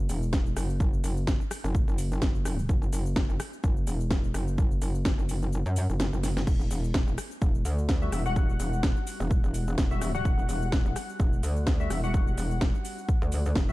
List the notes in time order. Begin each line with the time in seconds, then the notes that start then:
0.09 E1, open hi-hat, shaker
0.23 shaker
0.33 kick, snare, shaker
0.46 shaker
0.57 F#1, cross-stick, open hi-hat, shaker
0.70 shaker
0.80 kick, shaker
0.93 shaker
1.04 F#1, open hi-hat, shaker
1.17 shaker
1.27 F#1, kick, snare, shaker
1.41 shaker
1.51 cross-stick, open hi-hat, shaker
1.64 F#1, shaker
1.75 kick, shaker
1.88 F#1, shaker
1.98 open hi-hat, shaker
2.11 shaker
2.22 F#1, kick, snare, shaker
2.35 shaker
2.45 cross-stick, open hi-hat, shaker
2.59 shaker
2.69 F#1, kick, shaker
2.82 shaker
2.93 F#1, open hi-hat, shaker
3.06 shaker
3.16 F#1, kick, snare, shaker
3.30 F#1, shaker
3.40 cross-stick, open hi-hat, shaker
3.53 shaker
3.63 F#1, kick, shaker
3.77 shaker
3.87 E1, open hi-hat, shaker
4.00 shaker
4.11 kick, snare, shaker
4.24 shaker
4.34 F#1, cross-stick, open hi-hat, shaker
4.48 shaker
4.58 kick, shaker
4.71 shaker
4.82 F#1, open hi-hat, shaker
4.95 shaker
5.05 F#1, kick, snare, shaker
5.19 F#1, shaker
5.29 open hi-hat, shaker
5.42 shaker
5.53 shaker
5.66 F#2, shaker
5.76 open hi-hat, shaker
5.89 F#1, shaker
6.00 snare, shaker
6.13 F#1, shaker
6.23 snare, open hi-hat, shaker
6.37 snare, shaker
6.47 E1, kick, crash, shaker
6.60 shaker
6.71 E1, open hi-hat, shaker
6.84 shaker
6.94 E1, kick, snare, shaker
7.07 E1, shaker
7.18 cross-stick, open hi-hat, shaker
7.31 shaker
7.42 E1, kick, shaker
7.55 shaker
7.65 D2, open hi-hat, shaker
7.78 shaker
7.89 kick, snare, shaker
8.02 G3 F#4 E5, shaker
8.12 E1, cross-stick, open hi-hat, shaker
8.26 G3 F#4 F#5, shaker
8.36 kick, shaker
8.49 shaker
8.60 E1, open hi-hat, shaker
8.73 shaker
8.83 E1, kick, snare, shaker
8.97 shaker
9.07 open hi-hat, shaker
9.20 E1, shaker
9.31 kick, shaker
9.44 E1, shaker
9.54 open hi-hat, shaker
9.67 shaker
9.78 E1, kick, snare, shaker
9.91 G3 F#4 E5, shaker
10.02 cross-stick, open hi-hat, shaker
10.15 G3 F#4 F#5, shaker
10.25 E1, kick, shaker
10.39 shaker
10.49 E1, open hi-hat, shaker
10.62 shaker
10.72 E1, kick, snare, shaker
10.86 E1, shaker
10.96 cross-stick, open hi-hat, shaker
11.09 shaker
11.20 E1, kick, shaker
11.33 shaker
11.43 D2, open hi-hat, shaker
11.56 shaker
11.67 kick, snare, shaker
11.80 G3 F#4 E5, shaker
11.90 E1, cross-stick, open hi-hat, shaker
12.04 G3 F#4 F#5, shaker
12.14 kick, shaker
12.27 shaker
12.38 E1, open hi-hat, shaker
12.51 shaker
12.61 E1, kick, snare, shaker
12.74 shaker
12.85 open hi-hat, shaker
12.98 shaker
13.08 kick, shaker
13.22 D2, shaker
13.32 open hi-hat, shaker
13.45 shaker
13.55 E1, kick, snare, shaker
13.69 G3 F#4 E5, shaker